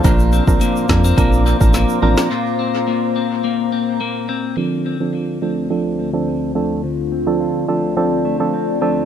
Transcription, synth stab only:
X:1
M:4/4
L:1/16
Q:1/4=106
K:Dm
V:1 name="Synth stab"
[F,CDB]3 [F,CDB]3 [F,CDB]2 [F,CDB]3 [F,CDB]3 [F,CDB]2 | z16 | [F,CDA]3 [F,CDA]3 [F,CDA]2 [F,CDA]3 [F,CDA]3 [F,CDA]2 | z3 [F,CDA]3 [F,CDA]2 [F,CDA]3 [F,CDA]3 [F,CDA]2 |]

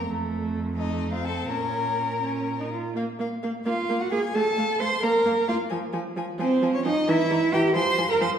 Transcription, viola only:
X:1
M:6/8
L:1/16
Q:3/8=87
K:Bbm
V:1 name="Viola"
=A,6 A,3 C3 | D6 D3 E F2 | B,2 B,2 B,2 B,2 B,2 B,2 | =A,2 A,2 A,2 B,2 B,2 B,2 |
F,2 F,2 F,2 F,2 F,2 F,2 | =E,2 E,2 E,2 F,2 F,2 F,2 |]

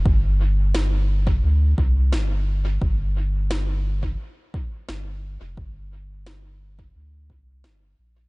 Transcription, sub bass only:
X:1
M:4/4
L:1/16
Q:1/4=87
K:Gm
V:1 name="Sub bass" clef=bass
G,,,8 D,,2 C,,2 G,,,4 | G,,,8 z4 G,,,3 F,,, | G,,,8 D,,2 C,,2 G,,,2 B,,,2 |]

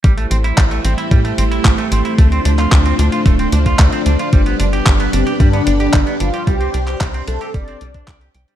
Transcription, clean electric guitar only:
X:1
M:4/4
L:1/16
Q:1/4=112
K:Am
V:1 name="Clean electric guitar"
G, A, C E G, A, C E G, A, C E G, A, C E | A, C D F A, C D F A, C D F A, C D F | G, B, D G G, B, D G G, B, D G G, B, D G | G, C D G G, C D G G, C G, D d G g G, |]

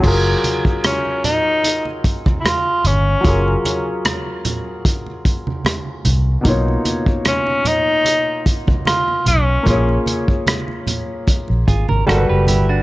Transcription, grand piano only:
X:1
M:4/4
L:1/8
Q:"Swing 16ths" 1/4=75
K:F#
V:1 name="Grand piano"
[F,EGA]8 | [F,EGA]8 | [B,,A,DEc]8 | [A,EGc]6 [=G,F=A^AB]2 |]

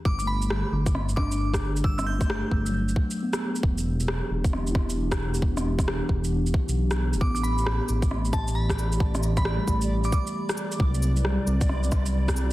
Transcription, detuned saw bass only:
X:1
M:4/4
L:1/16
Q:"Swing 16ths" 1/4=134
K:G
V:1 name="Detuned saw bass" clef=bass
G,,,4 G,,, z G,,,4 G,,,6 | G,,,4 G,,, z G,,,4 z6 | E,,,4 E,,, z E,,,4 E,,,6 | E,,,4 E,,, z E,,,4 z B,,, B,,,3 E,,, |
A,,,4 A,,, z A,,,4 A,,,6 | A,,,4 A,,, z A,,,4 z6 | C,,4 C,, z C,,4 C,,6 |]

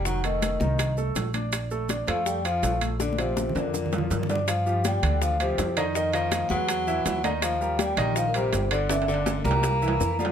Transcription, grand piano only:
X:1
M:4/4
L:1/8
Q:1/4=163
K:Bb
V:1 name="Grand piano"
[E,E] [A,A]2 [E,E]2 [A,A]2 [Dd]- | [Dd] [A,A] [Dd] [A,A]2 [F,F] [A,A]2 | [D,D] [F,F]2 [D,D]2 [F,F]2 [Dd] | [K:Gm] z [F,FG]2 [D,Dd]2 [F,FG]2 [E,Ee] |
[E,Ee] [E,Ee]2 [_A,_A=B]2 [=E,=E=e]2 [_E,_E_e]- | [E,Ee] [G,GB]2 [E,Ee]2 [G,GB]2 [D,Dd] | [D,Dd] [D,Dd]2 [G,GB]2 [=E,=E=e]2 [F,Ff] |]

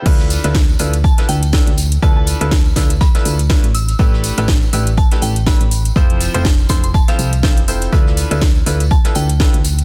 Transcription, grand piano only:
X:1
M:4/4
L:1/16
Q:"Swing 16ths" 1/4=122
K:Ddor
V:1 name="Grand piano"
[D,DEFAB]3 [D,DEFAB] z2 [D,DEFAB] z2 [D,DEFAB]2 z [D,DEFAB] z3 | [D,DEFAB]3 [D,DEFAB] z2 [D,DEFAB] z2 [D,DEFAB]2 z [A,DEFAB] z3 | [A,DEGAB]3 [A,DEGAB] z2 [A,DEGAB] z2 [A,DEGAB]2 z [A,DEGAB] z3 | [F,CEFAc]3 [F,CEFAc] z2 [F,CEFAc] z2 [F,CEFAc]2 z [F,CEFAc] z [CEFAc]2 |
[D,DEFAB]3 [D,DEFAB] z2 [D,DEFAB] z2 [D,DEFAB]2 z [D,DEFAB] z3 |]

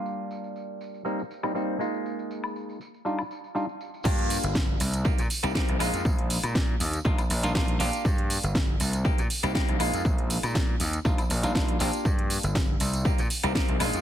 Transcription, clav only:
X:1
M:4/4
L:1/16
Q:"Swing 16ths" 1/4=120
K:Eb
V:1 name="Clav"
[G,B,DF]8 [G,B,CE] z2 [G,B,CE] [G,B,CE]2 [A,B,EF]2- | [A,B,EF]6 z2 [G,DEF] z3 [G,DEF] z3 | [B,DFG]6 z2 [B,CEG] z2 [B,CEG] [B,CEG]2 [A,B,EF]2- | [A,B,EF]6 z2 [G,DEF] z2 [G,DEF] [G,DEF]2 [B,DFG]2- |
[B,DFG]8 [B,CEG] z2 [B,CEG] [B,CEG]2 [A,B,EF]2- | [A,B,EF]6 z2 [G,DEF] z2 [G,DEF] [G,DEF]2 [B,DFG]2- | [B,DFG]8 [B,CEG] z2 [B,CEG] [B,CEG]2 [A,B,EF]2 |]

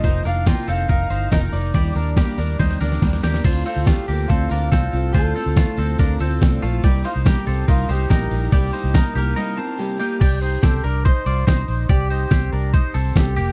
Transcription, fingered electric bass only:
X:1
M:4/4
L:1/16
Q:1/4=142
K:Dphr
V:1 name="Fingered electric bass" clef=bass
F,,,2 F,,,3 z F,,,2 F,,,2 G,,,2 F,,,2 F,,,2 | E,,2 E,,3 z E,,2 E,,2 D,,2 E,,2 E,,2 | D,,2 z D,,2 z D,,2 D,,2 D,,2 C,,2 C,,2 | D,,2 z D,,2 z D,,2 D,,2 D,,2 C,,2 B,,,2 |
C,,2 z C,,2 z C,,2 C,,2 C,,2 B,,,2 B,,,2 | C,,2 z C,,2 z C,,2 z8 | C,,4 C,,2 C,,3 z C,,2 C,,2 B,,,2 | C,,4 C,,2 C,,3 z C,,2 C,,2 F,,,2 |]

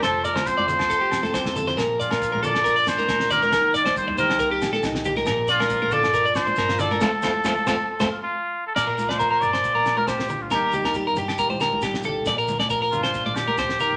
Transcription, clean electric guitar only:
X:1
M:4/4
L:1/16
Q:1/4=138
K:Bb
V:1 name="Clean electric guitar"
c2 d c2 d z2 A G2 A c2 A c | B2 d B2 B A2 B d2 B B2 d B | B2 d c2 z c2 B G2 A z2 G B | B2 d B2 B A2 B d2 z B2 d B |
[FAc] z [FAc] z [FAc] z [FAc] z2 [FAc] z6 | d B2 d B B2 c2 B2 B c2 z2 | B2 G B G B G G B c B2 G2 A2 | d B2 d B B2 c2 d2 B c2 B2 |]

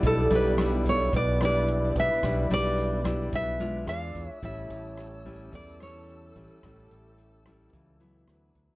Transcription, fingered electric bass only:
X:1
M:4/4
L:1/16
Q:1/4=109
K:Amix
V:1 name="Fingered electric bass" clef=bass
B,,,2 B,,,6 B,,,6 B,,, z | B,,,2 B,,,6 B,,,4 E,,2 E,, z | A,,,2 A,,,6 E,,6 A,,, z | A,,,2 A,,,6 C,,4 D,,2 D,, z |]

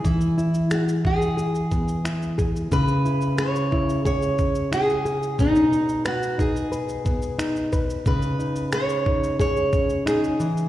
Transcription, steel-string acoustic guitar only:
X:1
M:4/4
L:1/8
Q:1/4=90
K:C#dor
V:1 name="Steel-string acoustic guitar"
E2 F G4 z | B2 c2 c2 G2 | D2 F G4 z | B2 c2 c2 G2 |]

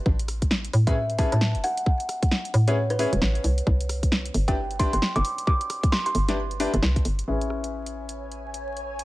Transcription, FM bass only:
X:1
M:4/4
L:1/16
Q:"Swing 16ths" 1/4=133
K:A
V:1 name="FM bass" clef=bass
A,,,6 A,,4- A,, A,,2 E,,, z2 | z6 A,,4- A,, E,,, A,,, z =C,, z | =C,,6 =G,,,4- G,,, G,,, z G,,, z2 | z6 =G,,,4- G,,, G,,, =C,, z G,,, z |
A,,,16 |]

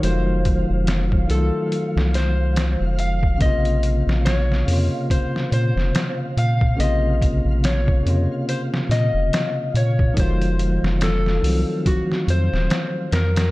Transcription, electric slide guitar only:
X:1
M:4/4
L:1/8
Q:"Swing 16ths" 1/4=71
K:Bbm
V:1 name="Electric slide guitar"
c3 =A2 c2 f | e2 d2 c c2 f | e2 d2 c e2 d | c2 =A2 G c2 B |]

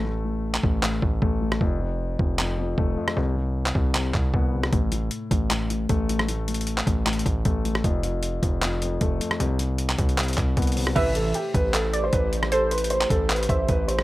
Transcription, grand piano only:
X:1
M:4/4
L:1/8
Q:1/4=154
K:Am
V:1 name="Grand piano" clef=bass
[A,,A,] A,,2 A,, A,, A,, A, A,, | F,, F,,2 F,, F,, F,, A, F,, | C, C,2 C, C, C, B, C, | A,, A,,2 A,, A,, A,, A, A,, |
A,, A,,2 A,, A,, A,, A, A,, | F,, F,,2 F,, F,, F,, A, F,, | C, C,2 C, C, C, B, C, | z8 |
z8 |]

